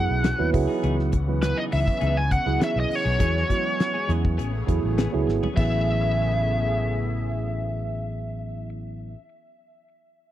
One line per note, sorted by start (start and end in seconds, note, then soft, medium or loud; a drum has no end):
0.00 0.49 C#3 medium
0.00 3.17 E3 medium
0.00 0.29 F#3 medium
0.00 0.49 A3 medium
0.00 0.29 B3 medium
0.00 0.52 B3 medium
0.00 0.29 E4 medium
0.00 0.29 G#4 medium
0.00 0.49 F#5 medium
0.09 0.32 B1 medium
0.23 0.39 E3 medium
0.23 0.38 A3 medium
0.23 0.37 C#4 medium
0.23 0.37 F#4 medium
0.23 snare loud
0.23 closed hi-hat medium
0.38 0.51 D#2 medium
0.38 0.52 F#3 medium
0.38 0.52 B3 medium
0.38 0.53 E4 medium
0.38 0.54 B4 loud
0.38 muted clean electric guitar stroke soft
0.53 0.66 C#2 medium
0.53 3.17 C#3 medium
0.53 1.13 F#3 medium
0.53 1.13 B3 medium
0.53 3.17 B3 medium
0.53 4.35 C#4 medium
0.53 1.13 E4 medium
0.53 1.13 G#4 medium
0.53 muted clean electric guitar stroke soft
0.53 kick medium
0.53 open hi-hat medium
0.68 0.82 B3 soft
0.68 0.82 D#4 medium
0.68 0.82 G#4 medium
0.83 1.52 C#2 medium
0.83 0.98 E3 medium
0.83 0.97 B3 medium
0.83 0.97 D#4 medium
0.83 0.97 G#4 medium
0.83 closed hi-hat medium
0.99 snare soft
1.12 muted clean electric guitar stroke soft
1.12 kick medium
1.12 closed hi-hat medium
1.27 2.19 F#3 medium
1.27 2.20 B3 medium
1.27 2.20 E4 medium
1.27 2.20 B4 medium
1.41 1.58 B4 medium
1.41 muted clean electric guitar stroke soft
1.41 snare loud
1.41 closed hi-hat medium
1.57 1.70 B3 soft
1.57 1.70 D#4 soft
1.57 1.70 G#4 soft
1.57 1.63 D#5 medium
1.70 1.85 C#2 medium
1.70 1.86 E3 soft
1.70 1.85 B3 medium
1.70 1.84 D#4 medium
1.70 1.84 G#4 medium
1.70 2.17 E5 medium
1.70 open hi-hat medium
1.85 muted clean electric guitar stroke soft
1.85 kick medium
2.01 2.37 C#2 medium
2.01 2.16 E3 medium
2.01 2.16 B3 medium
2.01 2.15 D#4 medium
2.01 2.15 G#4 medium
2.01 closed hi-hat medium
2.16 2.32 G#5 medium
2.16 muted clean electric guitar stroke soft
2.30 2.59 F#5 medium
2.30 muted clean electric guitar stroke soft
2.30 kick medium
2.30 closed hi-hat medium
2.46 2.57 C#2 medium
2.46 3.03 F#3 medium
2.46 3.04 B3 medium
2.46 3.04 E4 medium
2.46 3.04 G#4 medium
2.46 snare soft
2.60 2.76 E3 medium
2.60 2.75 B3 medium
2.60 2.75 D#4 medium
2.60 2.74 G#4 medium
2.60 snare loud
2.60 closed hi-hat medium
2.64 2.78 E5 medium
2.76 2.87 B1 medium
2.76 muted clean electric guitar stroke soft
2.80 2.95 D#5 medium
2.90 muted clean electric guitar stroke soft
2.90 open hi-hat medium
2.95 4.11 C#5 medium
3.04 3.16 B1 medium
3.04 3.18 B3 soft
3.04 3.19 D#4 soft
3.04 3.19 G#4 soft
3.19 3.43 E2 medium
3.19 4.36 E3 medium
3.19 3.42 F#3 medium
3.19 3.35 F#3 medium
3.19 4.37 G#3 medium
3.19 3.43 B3 medium
3.19 3.34 B3 medium
3.19 3.33 C#4 medium
3.19 3.43 E4 medium
3.19 4.37 F#4 medium
3.19 3.43 G#4 medium
3.19 3.33 G#4 medium
3.19 kick loud
3.19 closed hi-hat medium
3.34 muted clean electric guitar stroke soft
3.34 snare soft
3.49 3.96 F#3 medium
3.49 3.96 B3 medium
3.49 3.96 E4 medium
3.49 3.97 F#4 medium
3.49 muted clean electric guitar stroke soft
3.49 kick medium
3.49 closed hi-hat medium
3.78 muted clean electric guitar stroke soft
3.78 snare medium
3.78 closed hi-hat medium
3.94 4.07 B3 soft
3.94 4.07 C#4 medium
3.94 4.08 G#4 medium
4.08 4.39 E2 medium
4.08 4.24 F#3 medium
4.08 4.38 F#3 medium
4.08 4.23 B3 medium
4.08 4.38 B3 medium
4.08 4.23 C#4 medium
4.08 4.38 E4 medium
4.08 4.22 G#4 medium
4.08 4.39 G#4 medium
4.08 closed hi-hat medium
4.23 muted clean electric guitar stroke soft
4.23 kick medium
4.37 4.62 A1 medium
4.37 5.55 C#3 medium
4.37 4.53 E3 medium
4.37 5.55 A3 medium
4.37 4.52 B3 medium
4.37 5.55 B3 medium
4.37 4.52 C#4 medium
4.37 5.55 G#4 medium
4.37 4.52 G#4 medium
4.37 closed hi-hat medium
4.53 muted clean electric guitar stroke soft
4.67 4.80 E2 medium
4.67 5.02 F#3 medium
4.67 5.02 B3 medium
4.67 5.02 E4 medium
4.67 5.03 G#4 medium
4.67 muted clean electric guitar stroke soft
4.67 kick medium
4.67 closed hi-hat medium
4.84 5.06 A1 medium
4.98 5.13 E3 medium
4.98 5.12 B3 medium
4.98 5.11 C#4 medium
4.98 5.11 G#4 medium
4.98 snare loud
4.98 closed hi-hat medium
5.12 5.25 C#2 medium
5.12 5.47 F#3 medium
5.12 5.47 B3 medium
5.12 5.47 E4 medium
5.12 5.47 G#4 loud
5.12 muted clean electric guitar stroke soft
5.27 5.39 G#1 medium
5.27 muted clean electric guitar stroke soft
5.27 snare soft
5.43 5.56 B3 soft
5.43 5.57 C#4 soft
5.43 5.57 G#4 medium
5.43 floor tom medium
5.53 8.69 C#3 medium
5.53 9.14 E3 medium
5.53 9.10 F#3 medium
5.53 8.69 A3 medium
5.53 9.12 B3 medium
5.53 8.69 B3 medium
5.53 9.14 E4 medium
5.53 8.69 G#4 medium
5.53 8.69 E5 medium
5.57 9.14 A1 medium
5.57 9.18 B3 medium
5.57 9.22 C#4 medium
5.57 9.16 G#4 medium
5.57 kick loud
5.57 crash medium
5.64 9.25 G#4 medium